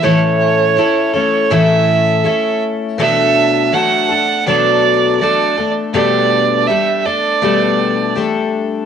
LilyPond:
<<
  \new Staff \with { instrumentName = "Fiddle" } { \time 4/4 \key a \mixolydian \tempo 4 = 81 cis''4. cis''8 e''4. r8 | e''4 fis''4 d''4 d''8. r16 | d''4 e''8 d''4. r4 | }
  \new Staff \with { instrumentName = "Twelve-string acoustic guitar" } { \time 4/4 \key a \mixolydian <a, e a cis' e' a'>4 <a cis' e' a'>8 <a cis' e' a'>8 <a, e a cis' e' a'>4 <a cis' e' a'>4 | <b, fis a d' a'>4 <fis a d' a'>8 <a d' a'>8 <b, fis a d' a'>4 <fis a d' a'>8 <a d' a'>8 | <b, g a d' a'>4 <g a d' a'>8 <a d' a'>8 <b, g a d' a'>4 <g a d' a'>4 | }
>>